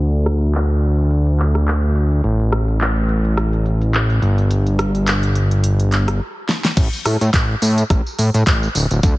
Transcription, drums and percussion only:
0.13 closed hi-hat
0.26 cross-stick, closed hi-hat
0.42 closed hi-hat
0.54 clap, closed hi-hat
0.70 closed hi-hat
0.83 closed hi-hat
0.98 closed hi-hat
1.11 closed hi-hat
1.27 closed hi-hat
1.39 clap, closed hi-hat
1.55 cross-stick, closed hi-hat
1.67 clap, closed hi-hat
1.83 closed hi-hat
1.96 closed hi-hat
2.11 closed hi-hat
2.24 closed hi-hat
2.40 closed hi-hat
2.52 cross-stick, closed hi-hat
2.68 closed hi-hat
2.81 clap, closed hi-hat
2.96 closed hi-hat
3.09 closed hi-hat
3.25 closed hi-hat
3.37 cross-stick, closed hi-hat
3.53 closed hi-hat
3.66 closed hi-hat
3.82 closed hi-hat
3.94 clap, closed hi-hat
4.10 closed hi-hat
4.22 closed hi-hat
4.38 closed hi-hat
4.51 closed hi-hat
4.67 closed hi-hat
4.79 cross-stick, closed hi-hat
4.95 closed hi-hat
5.07 clap, closed hi-hat
5.23 closed hi-hat
5.36 closed hi-hat
5.51 closed hi-hat
5.64 closed hi-hat
5.80 closed hi-hat
5.92 clap, closed hi-hat
6.08 cross-stick, closed hi-hat
6.49 snare
6.65 snare
6.77 kick, closed hi-hat, crash, tambourine
6.93 tambourine
7.05 cross-stick, open hi-hat, tambourine
7.21 closed hi-hat, tambourine
7.34 kick, clap, closed hi-hat, tambourine
7.62 open hi-hat, tambourine
7.78 closed hi-hat, tambourine
7.90 kick, cross-stick, closed hi-hat, tambourine
8.06 tambourine
8.19 open hi-hat, tambourine
8.34 closed hi-hat, tambourine
8.47 kick, clap, closed hi-hat, tambourine
8.63 tambourine
8.75 open hi-hat, tambourine
8.91 closed hi-hat, tambourine
9.03 kick, closed hi-hat, tambourine

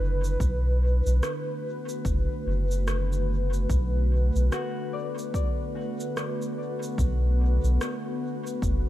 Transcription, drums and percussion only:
0.24 shaker
0.40 kick, shaker
1.07 shaker
1.23 cross-stick, shaker
1.89 shaker
2.05 kick, shaker
2.71 shaker
2.88 cross-stick, shaker
3.12 shaker
3.53 shaker
3.70 kick, shaker
4.36 shaker
4.52 cross-stick, shaker
5.18 shaker
5.34 kick, shaker
6.00 shaker
6.17 cross-stick, shaker
6.42 shaker
6.83 shaker
6.98 kick, shaker
7.65 shaker
7.81 cross-stick, shaker
8.47 shaker
8.62 kick, shaker

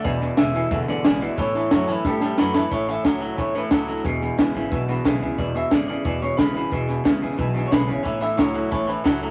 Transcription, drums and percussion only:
0.04 kick, snare
0.13 snare
0.21 snare
0.37 snare, hi-hat pedal
0.54 snare
0.71 kick, snare
0.88 snare
1.04 snare, hi-hat pedal
1.21 snare
1.37 kick, snare
1.54 snare
1.71 snare, hi-hat pedal
1.88 snare
2.05 kick, snare
2.21 snare
2.38 snare, hi-hat pedal
2.54 snare
2.71 kick, snare
2.88 snare
3.05 kick, snare, hi-hat pedal
3.21 snare
3.38 kick, snare
3.55 snare
3.71 kick, snare, hi-hat pedal
3.88 snare
3.96 snare
4.04 kick, snare
4.22 snare
4.38 kick, snare, hi-hat pedal
4.55 snare
4.72 kick, snare
4.89 snare
5.05 kick, snare, hi-hat pedal
5.22 snare
5.38 kick, snare
5.55 snare
5.71 kick, snare, hi-hat pedal
5.88 snare
6.05 kick, snare
6.22 snare
6.38 kick, snare, hi-hat pedal
6.56 snare
6.72 kick, snare
6.89 snare
7.05 kick, snare, hi-hat pedal
7.22 snare
7.31 snare
7.39 kick, snare
7.56 snare
7.72 kick, snare, hi-hat pedal
7.89 snare
8.05 kick, snare
8.23 snare
8.39 kick, snare, hi-hat pedal
8.56 snare
8.72 kick, snare
8.88 snare
9.05 kick, snare, hi-hat pedal
9.22 snare

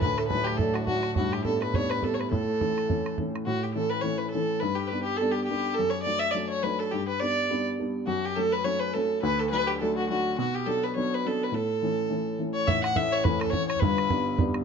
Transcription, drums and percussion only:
0.02 bodhran
0.18 bodhran
0.30 bodhran
0.47 bodhran
0.59 bodhran
0.75 bodhran
0.87 bodhran
1.03 bodhran
1.16 bodhran
1.33 bodhran
1.45 bodhran
1.62 bodhran
1.74 bodhran
1.91 bodhran
2.03 bodhran
2.21 bodhran
2.33 bodhran
2.61 bodhran
2.78 bodhran
2.90 bodhran
3.06 bodhran
3.18 bodhran
3.36 bodhran
12.68 bodhran
12.84 bodhran
12.96 bodhran
13.25 bodhran
13.41 bodhran
13.47 bodhran
13.53 bodhran
13.70 bodhran
13.76 bodhran
13.82 bodhran
13.98 bodhran
14.10 bodhran
14.39 bodhran
14.54 bodhran

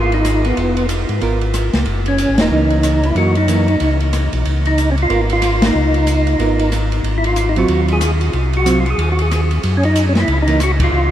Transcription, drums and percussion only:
0.12 ride
0.25 cross-stick, hi-hat pedal, ride
0.45 ride
0.57 ride
0.77 ride
0.89 hi-hat pedal, ride
1.09 ride
1.21 ride
1.41 ride
1.54 cross-stick, hi-hat pedal, ride
1.73 snare, ride
1.85 ride
2.06 ride
2.18 hi-hat pedal, ride
2.38 snare, ride
2.70 ride
2.83 cross-stick, hi-hat pedal, ride
3.03 ride
3.16 ride
3.35 ride
3.48 hi-hat pedal, ride
3.68 ride
3.80 ride
4.00 ride
4.13 cross-stick, hi-hat pedal, ride
4.33 ride
4.45 ride
4.65 ride
4.78 hi-hat pedal, ride
4.98 ride
5.10 ride
5.30 ride
5.42 cross-stick, hi-hat pedal, ride
5.62 snare, ride
5.94 ride
6.07 hi-hat pedal, ride
6.27 ride
6.40 ride
6.59 ride
6.72 cross-stick, hi-hat pedal, ride
6.92 ride
7.04 ride
7.24 ride
7.36 hi-hat pedal, ride
7.56 ride
7.68 ride
7.88 ride
8.01 cross-stick, hi-hat pedal, ride
8.21 ride
8.33 ride
8.53 ride
8.66 hi-hat pedal, ride
8.86 ride
8.99 ride
9.19 ride
9.31 cross-stick, hi-hat pedal, ride
9.51 ride
9.63 ride
9.83 ride
9.96 hi-hat pedal, ride
10.15 snare, ride
10.28 ride
10.47 ride
10.60 cross-stick, hi-hat pedal, ride
10.80 kick, ride

